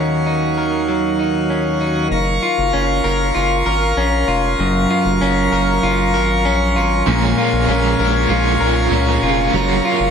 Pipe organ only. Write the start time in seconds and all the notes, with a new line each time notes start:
Already playing: D#2 D#3 F#4 C#5 F5
2.11 A#4 F5 A#5 C#6
7.06 G#5
9.55 A#5